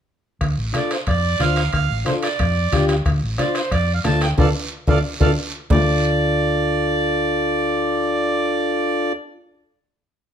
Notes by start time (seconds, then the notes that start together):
0.41 D2, bombo low, bombo rim, high conga, high timbale, long guiro
0.58 A1
0.73 D4 F4 A4 D5, bombo rim, high conga, high timbale, short guiro
0.91 C5, bombo rim, high timbale, short guiro
1.07 F2 D5, bombo low, bombo rim, high conga, high timbale, long guiro
1.40 D2 D4 F4 C5 F5, bombo rim, high conga, high timbale, short guiro
1.56 bombo rim, high timbale, short guiro
1.73 D2 F5, bombo low, bombo rim, high conga, high timbale, long guiro
1.90 A1
2.05 D4 F4 A4 C5, bombo rim, high conga, high timbale, short guiro
2.23 D5, bombo rim, high timbale, short guiro
2.39 F2, bombo low, bombo rim, high conga, high timbale, long guiro
2.72 D2 D4 F4 G4, bombo low, bombo rim, high conga, high timbale, short guiro
2.88 bombo rim, high timbale, short guiro
3.05 D2, bombo low, bombo rim, high conga, high timbale, long guiro
3.23 A1
3.38 D4 F4 C5 D5, bombo rim, high conga, high timbale, short guiro
3.55 C5, bombo rim, high timbale, short guiro
3.72 F2 D5, bombo low, bombo rim, high conga, high timbale, long guiro
3.94 F5
4.04 D2 D4 F4 A4 A5, bombo rim, high conga, high timbale, low timbale, short guiro
4.21 G5, bombo rim, high timbale, short guiro
4.37 D2 D4 F4 A4 D5 F5, bombo low, high conga, high timbale, long guiro
4.87 D2 D4 F4 A4 D5 F5, bombo low, high conga, high timbale, long guiro
5.20 D2 D4 F4 A4 D5 F5, bombo low, high conga, high timbale, long guiro
5.70 D2 D4 F4 A4 D5, bombo low, low conga, low timbale, long guiro